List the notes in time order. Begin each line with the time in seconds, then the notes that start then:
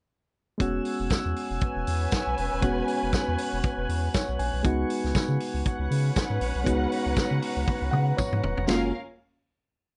0.58 E1 G#3 B3 C#4 F#4 C#5 F#5 G#5 E6, kick, closed hi-hat
0.85 open hi-hat
1.00 E1
1.10 E2, kick, snare, closed hi-hat, tambourine
1.25 E2
1.36 open hi-hat
1.51 E1
1.61 C#4 B4 G#5, kick, closed hi-hat
1.76 E1
1.87 E2, open hi-hat
2.12 kick, snare, closed hi-hat, tambourine
2.27 B1
2.38 E1, open hi-hat
2.53 D#1
2.61 E1 G#3 B3 C#4 F#4 F#6, kick, closed hi-hat
2.88 open hi-hat
3.03 E1
3.12 E2, kick, snare, closed hi-hat, tambourine
3.28 E2
3.38 open hi-hat
3.53 E1
3.63 kick, closed hi-hat
3.78 E1
3.89 E2, open hi-hat
4.14 C#5, kick, snare, closed hi-hat, tambourine
4.29 B1
4.39 A#1 G#5, open hi-hat
4.53 B1
4.63 C#2 G#3 B3 D#4 F#4 B4 C#6, kick, closed hi-hat
4.90 open hi-hat
5.04 C#2, snare
5.15 C#3, kick, snare, closed hi-hat, tambourine
5.28 C#3
5.40 open hi-hat
5.54 C#2
5.65 C#4 B4 F#5, kick, closed hi-hat
5.79 C#2
5.91 C#3, open hi-hat
6.16 kick, snare, closed hi-hat, tambourine
6.30 G#2
6.41 A#1, open hi-hat
6.55 B1
6.64 C#2 G#3 B3 D#4 F#4 A#5, kick, closed hi-hat
6.92 open hi-hat
7.06 C#2
7.16 C#3, kick, snare, closed hi-hat, tambourine
7.31 C#3
7.42 open hi-hat
7.57 C#2
7.68 kick, high tom
7.82 C#2
7.91 C#3 F#5, mid tom
8.17 C#5, kick, mid tom, tambourine
8.32 G#2, mid tom
8.44 D#1, floor tom
8.57 F1, floor tom
8.67 F#1 G#3 A#3 C#4 F4 F#4 G#4 A#4 F5, snare, ride bell, tambourine